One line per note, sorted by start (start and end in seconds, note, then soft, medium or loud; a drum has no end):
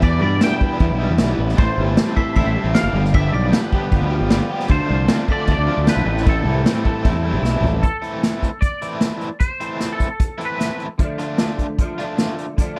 0.00 0.19 E2 loud
0.00 0.39 E2 loud
0.00 0.39 B2 loud
0.00 1.00 E3 medium
0.00 0.23 E3 medium
0.00 0.23 G3 loud
0.00 0.21 B3 loud
0.00 0.21 E4 loud
0.00 0.21 D5 loud
0.00 0.21 B6 medium
0.00 kick loud
0.00 crash medium
0.21 0.40 G2 loud
0.21 0.41 E3 medium
0.21 0.99 G3 medium
0.21 0.41 G3 medium
0.21 0.41 B3 medium
0.21 0.42 E4 medium
0.21 0.42 D5 medium
0.21 0.40 B6 medium
0.40 0.80 E2 medium
0.40 0.80 B2 medium
0.40 0.61 E3 medium
0.40 0.61 G3 medium
0.40 0.60 B3 loud
0.40 1.39 D4 medium
0.40 0.59 E4 loud
0.40 1.36 G5 loud
0.40 1.35 E7 medium
0.40 snare loud
0.40 crash medium
0.60 0.99 E3 medium
0.60 1.00 G3 medium
0.60 0.98 B3 medium
0.60 0.97 E4 medium
0.60 1.39 B4 medium
0.60 kick medium
0.80 0.89 E2 loud
0.80 1.17 E4 medium
0.80 kick medium
0.80 crash medium
0.91 1.08 B1 medium
0.98 1.17 E3 medium
0.98 1.62 G3 medium
0.98 1.19 G3 medium
0.98 1.19 B3 medium
0.98 1.20 E4 medium
1.10 1.19 E2 medium
1.18 1.37 B1 medium
1.18 1.55 E3 medium
1.18 1.57 G3 medium
1.18 1.58 B3 medium
1.18 1.58 E4 medium
1.18 snare loud
1.18 crash medium
1.39 1.56 A1 medium
1.39 1.59 B4 medium
1.49 snare soft
1.56 1.67 A1 loud
1.56 1.94 A2 medium
1.56 2.56 A2 medium
1.56 1.95 E3 loud
1.56 1.77 A3 loud
1.56 1.76 C4 loud
1.56 1.75 E4 loud
1.56 2.19 C5 loud
1.56 2.12 A6 medium
1.56 kick loud
1.56 crash medium
1.76 1.96 G1 loud
1.76 2.54 G3 medium
1.76 1.95 A3 medium
1.76 1.96 C4 medium
1.76 1.96 E4 medium
1.95 2.35 A2 medium
1.95 2.36 E3 medium
1.95 2.17 A3 medium
1.95 2.95 C4 medium
1.95 2.16 C4 loud
1.95 2.15 E4 loud
1.95 snare loud
1.95 crash medium
2.16 2.57 A3 medium
2.16 2.56 C4 medium
2.16 2.54 E4 medium
2.16 2.95 A4 medium
2.16 2.35 E5 medium
2.16 2.35 C7 medium
2.16 kick medium
2.36 2.45 A1 loud
2.36 2.74 E4 medium
2.36 2.74 E5 loud
2.36 2.72 C7 medium
2.36 kick medium
2.36 crash medium
2.46 2.55 A1 medium
2.55 2.95 G3 medium
2.55 2.75 A3 medium
2.55 2.75 C4 medium
2.55 2.76 E4 medium
2.64 2.74 A1 medium
2.74 2.93 E3 medium
2.74 2.94 A3 medium
2.74 2.94 C4 medium
2.74 2.95 E4 medium
2.74 2.94 E4 loud
2.74 3.14 F5 medium
2.74 3.11 D7 medium
2.74 snare loud
2.74 crash medium
2.83 2.92 F#1 medium
2.93 3.30 G1 loud
2.93 3.12 G2 medium
2.93 3.13 D3 medium
2.93 3.14 F3 medium
2.93 3.15 G3 medium
2.93 3.14 B3 medium
2.93 3.15 G4 medium
3.05 snare soft
3.13 4.11 G2 medium
3.13 3.52 G2 loud
3.13 3.52 D3 loud
3.13 3.35 F3 loud
3.13 3.34 G3 medium
3.13 3.33 B3 loud
3.13 3.32 G4 loud
3.13 3.33 E5 loud
3.13 3.32 B6 medium
3.13 kick loud
3.13 crash medium
3.32 3.51 B1 medium
3.32 4.11 F3 medium
3.32 3.53 F3 medium
3.32 3.53 G3 medium
3.32 3.53 B3 medium
3.32 3.54 G4 medium
3.32 3.53 D5 medium
3.32 3.52 B6 medium
3.53 3.92 G2 medium
3.53 3.92 D3 medium
3.53 3.73 F3 medium
3.53 3.72 G3 medium
3.53 4.51 B3 medium
3.53 3.72 B3 loud
3.53 3.70 G4 loud
3.53 4.51 B4 medium
3.53 4.51 G6 medium
3.53 snare loud
3.53 crash medium
3.72 4.12 F3 medium
3.72 4.11 G3 medium
3.72 4.10 B3 medium
3.72 4.09 G4 medium
3.72 4.49 G4 medium
3.72 kick medium
3.91 4.01 G1 loud
3.91 4.31 F4 medium
3.91 kick medium
3.91 crash medium
4.02 4.20 D2 medium
4.10 4.70 F3 medium
4.10 4.28 F3 medium
4.10 4.30 G3 medium
4.10 4.30 B3 medium
4.10 4.31 G4 medium
4.21 4.39 G1 medium
4.30 4.68 F3 medium
4.30 4.69 G3 medium
4.30 4.69 B3 loud
4.30 4.71 F4 medium
4.30 4.70 G4 medium
4.30 snare loud
4.30 crash medium
4.50 4.70 G4 medium
4.60 snare soft
4.68 4.79 D2 medium
4.68 5.07 D3 loud
4.68 5.68 D3 medium
4.68 4.90 A3 loud
4.68 4.88 D4 loud
4.68 4.87 F4 loud
4.68 5.31 C5 medium
4.68 5.24 A6 medium
4.68 kick loud
4.68 crash medium
4.88 5.08 C2 loud
4.88 5.67 F3 medium
4.88 5.09 A3 medium
4.88 5.09 D4 medium
4.88 5.09 F4 medium
5.08 5.48 D3 medium
5.08 5.30 A3 medium
5.08 6.65 C4 medium
5.08 5.28 D4 medium
5.08 5.27 F4 loud
5.08 snare loud
5.08 crash medium
5.28 5.69 A3 medium
5.28 5.67 D4 medium
5.28 5.65 F4 medium
5.28 6.49 A4 medium
5.28 5.51 D5 medium
5.28 5.48 B6 medium
5.28 kick medium
5.47 5.57 D2 loud
5.47 5.87 D4 medium
5.47 5.85 A6 medium
5.47 kick medium
5.47 crash medium
5.52 5.89 D5 medium
5.58 5.67 D2 medium
5.67 6.07 F3 medium
5.67 5.87 A3 medium
5.67 5.87 D4 medium
5.67 5.87 F4 medium
5.78 5.87 D2 medium
5.86 6.05 D3 medium
5.86 6.06 A3 medium
5.86 6.05 D4 loud
5.86 6.08 D4 medium
5.86 6.05 F4 medium
5.86 6.29 B4 medium
5.86 6.24 G6 medium
5.86 snare loud
5.86 crash medium
5.97 6.05 B1 medium
6.05 6.42 A1 loud
6.05 6.25 A2 medium
6.05 6.23 A2 medium
6.05 6.23 E3 medium
6.05 6.24 A3 medium
6.05 6.25 C4 medium
6.05 6.25 E4 loud
6.17 snare soft
6.24 6.63 A2 loud
6.24 7.24 A2 medium
6.24 6.64 E3 medium
6.24 6.45 A3 loud
6.24 6.44 C4 loud
6.24 6.43 E4 loud
6.24 7.40 E6 medium
6.24 kick loud
6.24 crash medium
6.29 7.41 A4 medium
6.44 6.64 C2 loud
6.44 7.21 G3 medium
6.44 6.64 A3 medium
6.44 6.65 C4 medium
6.44 6.65 E4 medium
6.64 7.04 A2 medium
6.64 7.04 E3 medium
6.64 6.85 A3 loud
6.64 7.64 C4 medium
6.64 6.84 C4 medium
6.64 6.83 E4 loud
6.64 snare loud
6.64 crash medium
6.84 7.25 A3 medium
6.84 7.24 C4 medium
6.84 7.22 E4 medium
6.84 7.61 A4 medium
6.84 kick medium
7.04 7.12 A1 loud
7.04 7.41 E4 medium
7.04 kick medium
7.04 crash medium
7.12 7.32 E2 medium
7.22 7.82 G3 medium
7.22 7.44 A3 medium
7.22 7.44 C4 medium
7.22 7.45 E4 medium
7.33 7.41 A1 medium
7.42 7.60 B1 medium
7.42 7.82 E3 medium
7.42 7.83 A3 medium
7.42 7.83 C4 medium
7.42 7.82 E4 medium
7.42 snare medium
7.46 7.83 E4 loud
7.61 7.80 A1 medium
7.61 7.83 A4 medium
7.61 floor tom medium
7.83 8.58 A4 medium
7.83 kick loud
7.83 closed hi-hat medium
8.02 8.22 E3 medium
8.02 8.22 A3 medium
8.02 8.22 C4 medium
8.02 8.22 E4 medium
8.02 closed hi-hat soft
8.23 8.48 E3 medium
8.23 8.49 A3 medium
8.23 8.49 C4 medium
8.23 8.49 E4 medium
8.23 snare medium
8.23 closed hi-hat medium
8.43 kick medium
8.43 closed hi-hat soft
8.61 9.39 D5 medium
8.61 kick loud
8.61 closed hi-hat medium
8.82 9.00 E3 medium
8.82 9.01 A3 medium
8.82 9.01 C4 medium
8.82 9.02 E4 medium
8.82 closed hi-hat medium
9.01 9.27 E3 medium
9.01 9.28 A3 medium
9.01 9.28 C4 medium
9.01 9.28 E4 medium
9.01 snare medium
9.01 closed hi-hat medium
9.21 closed hi-hat medium
9.40 9.95 C5 medium
9.40 kick medium
9.40 closed hi-hat medium
9.60 9.79 E3 medium
9.60 9.79 A3 medium
9.60 9.80 C4 medium
9.60 9.81 E4 medium
9.60 closed hi-hat medium
9.80 10.06 E3 medium
9.80 10.06 A3 medium
9.80 10.07 C4 medium
9.80 10.07 E4 medium
9.80 snare medium
9.80 closed hi-hat medium
9.93 10.48 A4 medium
10.00 kick medium
10.00 closed hi-hat soft
10.20 kick loud
10.20 closed hi-hat medium
10.38 10.57 E3 medium
10.38 10.58 A3 medium
10.38 10.58 C4 medium
10.38 10.59 E4 medium
10.38 closed hi-hat medium
10.45 10.83 B4 medium
10.59 10.85 E3 medium
10.59 10.85 A3 medium
10.59 10.85 C4 medium
10.59 10.86 E4 medium
10.59 snare medium
10.59 closed hi-hat medium
10.80 closed hi-hat soft
10.98 11.78 D3 medium
10.98 11.79 F3 medium
10.98 11.80 A3 medium
10.98 11.81 D4 medium
10.98 kick medium
10.98 closed hi-hat medium
11.18 11.37 D3 medium
11.18 11.38 A3 medium
11.18 11.39 D4 medium
11.18 11.39 F4 medium
11.18 closed hi-hat medium
11.38 11.64 D3 medium
11.38 11.65 A3 medium
11.38 11.65 D4 medium
11.38 11.65 F4 medium
11.38 snare loud
11.38 closed hi-hat medium
11.59 kick medium
11.59 closed hi-hat medium
11.78 12.56 D3 medium
11.78 12.58 F3 medium
11.78 12.59 A3 medium
11.78 12.60 D4 medium
11.78 kick medium
11.78 closed hi-hat medium
11.98 12.17 D3 medium
11.98 12.18 A3 medium
11.98 12.18 D4 medium
11.98 12.18 F4 medium
11.98 closed hi-hat medium
12.18 12.44 D3 medium
12.18 12.44 A3 medium
12.18 12.44 D4 medium
12.18 12.44 F4 medium
12.18 snare medium
12.18 closed hi-hat medium
12.38 closed hi-hat medium
12.57 12.79 D3 medium
12.57 12.79 F3 medium
12.57 12.79 A3 medium
12.57 12.79 D4 medium
12.57 kick loud
12.57 closed hi-hat medium